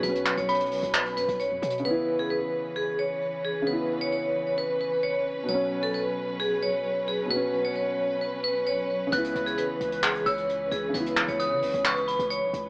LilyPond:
<<
  \new Staff \with { instrumentName = "Synth bell" } { \time 4/4 \key cis \minor \tempo 4 = 132 r4 b''2 r4 | r1 | r1 | r1 |
r1 | fis'''2~ fis'''8 e'''8 r4 | r4 dis'''4 cis'''8 b''4. | }
  \new Staff \with { instrumentName = "Vibraphone" } { \time 4/4 \key cis \minor b'8. cis''16 cis''4 b'8 b'8 cis''4 | b'8. gis'16 b'4 gis'8 cis''4 gis'8 | b'8. cis''16 cis''4 b'8 b'8 cis''8 r8 | cis''8. a'16 b'4 gis'8 cis''4 gis'8 |
b'8. cis''16 cis''4 b'8 b'8 cis''4 | b'8. gis'16 b'4 gis'8 cis''4 gis'8 | b'8. cis''16 cis''4 b'8 b'8 cis''8 r8 | }
  \new Staff \with { instrumentName = "Grand piano" } { \time 4/4 \key cis \minor <b, fis cis'>1 | <cis b e'>1 | <cis b e'>1 | <b, fis cis'>1 |
<b, fis cis'>1 | <cis b e'>1 | <cis b e'>1 | }
  \new Staff \with { instrumentName = "String section" } { \time 4/4 \key cis \minor << { <cis' b'>1 | <cis' b'>1~ | <cis' b'>1~ | <cis' b'>1~ |
<cis' b'>1~ | <cis' b'>1~ | <cis' b'>1 | } \\ { fis1 | e1~ | e1 | fis1~ |
fis1 | e1~ | e1 | } >> }
  \new Staff \with { instrumentName = "808-style bass" } { \clef bass \time 4/4 \key cis \minor b,,8. b,,4 b,,8. fis,16 b,,8 fis,16 b,8 | r1 | r1 | r1 |
r1 | cis,8 cis,8 r8 cis,4 cis,4 cis,8 | cis,8. cis,8 cis16 cis,16 cis,4 cis,8 b,,16 cis,8 | }
  \new DrumStaff \with { instrumentName = "Drums" } \drummode { \time 4/4 hh16 hh16 <hc hh>16 hh16 hh32 hh32 hh32 hh32 hho16 hh16 <hc hh>16 hh16 hh16 hh16 \tuplet 3/2 { hh16 r16 r16 hh16 hh16 hh16 } | r4 r4 r4 r4 | r4 r4 r4 r4 | r4 r4 r4 r4 |
r4 r4 r4 r4 | hh16 hh16 hh16 hh16 hh8 hh16 hh16 <hc hh>16 hh16 hh16 hh16 hh8 hh8 | hh16 hh16 <hc hh>16 hh16 hh8 hho16 hh16 <hc hh>16 hh16 hh16 hh16 hh8 hh8 | }
>>